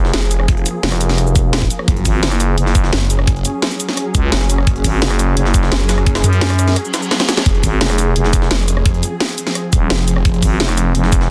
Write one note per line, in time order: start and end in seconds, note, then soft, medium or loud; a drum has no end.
0.00 0.12 F1 loud
0.00 1.84 F3 medium
0.00 1.85 A#3 medium
0.00 1.84 G#4 loud
0.05 snare soft
0.13 0.64 F1 loud
0.13 snare loud
0.13 closed hi-hat medium
0.31 closed hi-hat medium
0.31 cabasa medium
0.40 cross-stick medium
0.48 kick loud
0.48 closed hi-hat medium
0.57 closed hi-hat soft
0.66 closed hi-hat medium
0.66 cabasa medium
0.83 1.44 F1 loud
0.83 snare loud
0.83 closed hi-hat medium
0.92 cross-stick medium
0.92 closed hi-hat soft
0.92 cabasa soft
1.01 closed hi-hat medium
1.01 cabasa medium
1.09 snare soft
1.09 closed hi-hat soft
1.18 cross-stick soft
1.18 closed hi-hat medium
1.27 cabasa soft
1.36 kick loud
1.36 closed hi-hat medium
1.36 cabasa medium
1.44 1.69 E1 loud
1.53 snare loud
1.53 closed hi-hat medium
1.62 kick medium
1.62 snare medium
1.70 closed hi-hat medium
1.70 cabasa medium
1.79 cross-stick soft
1.88 2.04 F#1 loud
1.88 7.42 F#3 medium
1.88 7.42 C#4 medium
1.88 11.30 G#4 medium
1.88 kick loud
1.88 closed hi-hat medium
1.97 closed hi-hat soft
2.05 2.21 G#1 loud
2.05 kick medium
2.05 closed hi-hat medium
2.05 open hi-hat medium
2.05 cabasa medium
2.23 2.56 F#1 loud
2.23 snare loud
2.23 closed hi-hat medium
2.31 cross-stick medium
2.31 cabasa soft
2.40 cross-stick soft
2.40 closed hi-hat medium
2.40 cabasa medium
2.58 2.91 F#1 loud
2.58 closed hi-hat medium
2.66 snare soft
2.75 kick loud
2.75 closed hi-hat loud
2.75 closed hi-hat medium
2.75 cabasa medium
2.84 snare soft
2.93 3.43 F#1 loud
2.93 snare loud
2.93 closed hi-hat medium
3.10 closed hi-hat medium
3.10 cabasa medium
3.19 cross-stick soft
3.27 kick loud
3.27 closed hi-hat medium
3.36 closed hi-hat soft
3.45 closed hi-hat medium
3.45 cabasa medium
3.62 snare loud
3.62 closed hi-hat medium
3.71 closed hi-hat soft
3.71 cabasa soft
3.80 closed hi-hat medium
3.80 cabasa medium
3.89 snare soft
3.89 closed hi-hat soft
3.97 cross-stick soft
3.97 closed hi-hat medium
4.15 4.31 C#2 loud
4.15 kick loud
4.15 closed hi-hat medium
4.15 cabasa medium
4.32 4.66 F#1 loud
4.32 snare loud
4.32 closed hi-hat medium
4.41 snare medium
4.50 closed hi-hat medium
4.50 cabasa medium
4.58 cross-stick soft
4.67 4.83 F#1 loud
4.67 kick loud
4.67 closed hi-hat medium
4.76 closed hi-hat soft
4.84 5.00 G#1 loud
4.84 kick medium
4.84 closed hi-hat loud
4.84 open hi-hat medium
4.84 cabasa medium
5.02 5.35 F#1 loud
5.02 snare loud
5.02 closed hi-hat medium
5.11 cross-stick medium
5.11 cabasa soft
5.19 cross-stick soft
5.19 closed hi-hat medium
5.19 closed hi-hat loud
5.19 cabasa medium
5.37 5.70 F#1 loud
5.37 closed hi-hat medium
5.46 snare soft
5.54 kick loud
5.54 closed hi-hat loud
5.54 closed hi-hat medium
5.54 cabasa medium
5.63 snare soft
5.72 6.23 F#1 loud
5.72 snare loud
5.72 closed hi-hat medium
5.89 snare loud
5.89 closed hi-hat loud
5.89 closed hi-hat medium
5.89 cabasa medium
5.98 cross-stick soft
5.98 closed hi-hat soft
6.07 kick loud
6.07 closed hi-hat medium
6.15 snare loud
6.15 closed hi-hat medium
6.24 6.76 F#2 loud
6.24 closed hi-hat soft
6.24 closed hi-hat loud
6.24 cabasa medium
6.33 closed hi-hat medium
6.41 snare loud
6.41 closed hi-hat medium
6.50 cross-stick medium
6.50 closed hi-hat soft
6.50 cabasa soft
6.59 cross-stick soft
6.59 closed hi-hat medium
6.59 closed hi-hat loud
6.59 cabasa medium
6.68 snare soft
6.68 closed hi-hat soft
6.76 cross-stick soft
6.76 closed hi-hat medium
6.76 reverse cymbal medium
6.85 cabasa soft
6.94 snare loud
6.94 closed hi-hat medium
6.94 closed hi-hat loud
6.94 cabasa medium
7.02 cabasa soft
7.11 snare medium
7.11 snare loud
7.11 closed hi-hat medium
7.20 snare loud
7.20 snare medium
7.20 closed hi-hat medium
7.29 snare loud
7.29 snare medium
7.29 closed hi-hat medium
7.29 closed hi-hat loud
7.29 cabasa medium
7.37 snare loud
7.37 snare medium
7.37 closed hi-hat medium
7.46 7.62 F1 loud
7.46 11.30 F3 medium
7.46 11.30 C4 medium
7.46 kick loud
7.46 closed hi-hat medium
7.55 closed hi-hat soft
7.63 7.80 G#1 loud
7.63 kick medium
7.63 closed hi-hat loud
7.63 open hi-hat medium
7.63 cabasa medium
7.81 8.14 F1 loud
7.81 snare loud
7.81 closed hi-hat medium
7.90 cross-stick medium
7.90 cabasa soft
7.98 cross-stick soft
7.98 closed hi-hat medium
7.98 closed hi-hat loud
7.98 cabasa medium
8.16 8.49 F1 loud
8.16 closed hi-hat medium
8.25 snare soft
8.33 kick loud
8.33 closed hi-hat loud
8.33 closed hi-hat medium
8.33 cabasa medium
8.42 snare medium
8.51 9.02 F1 loud
8.51 snare loud
8.51 closed hi-hat medium
8.68 closed hi-hat loud
8.68 closed hi-hat medium
8.68 cabasa medium
8.77 cross-stick medium
8.86 kick loud
8.86 closed hi-hat medium
8.94 closed hi-hat soft
9.03 closed hi-hat loud
9.03 closed hi-hat medium
9.03 cabasa medium
9.20 snare loud
9.20 closed hi-hat medium
9.29 closed hi-hat soft
9.29 cabasa soft
9.38 closed hi-hat medium
9.38 closed hi-hat loud
9.38 cabasa medium
9.47 snare soft
9.47 closed hi-hat soft
9.55 cross-stick soft
9.55 closed hi-hat medium
9.73 9.89 D#1 loud
9.73 kick loud
9.73 closed hi-hat loud
9.73 closed hi-hat medium
9.73 cabasa medium
9.90 10.24 F1 loud
9.90 snare loud
9.90 closed hi-hat medium
9.99 snare medium
10.08 closed hi-hat loud
10.08 closed hi-hat medium
10.08 cabasa medium
10.16 cross-stick medium
10.25 10.41 F1 loud
10.25 kick loud
10.25 closed hi-hat medium
10.34 closed hi-hat soft
10.43 10.59 G#1 loud
10.43 kick medium
10.43 closed hi-hat medium
10.43 open hi-hat medium
10.43 cabasa medium
10.60 10.94 F1 loud
10.60 snare loud
10.60 closed hi-hat medium
10.69 cross-stick medium
10.69 cabasa soft
10.77 cross-stick soft
10.77 closed hi-hat loud
10.77 closed hi-hat medium
10.77 cabasa medium
10.95 11.28 F1 loud
10.95 closed hi-hat medium
11.04 snare soft
11.12 kick loud
11.12 closed hi-hat medium
11.12 cabasa medium
11.21 snare soft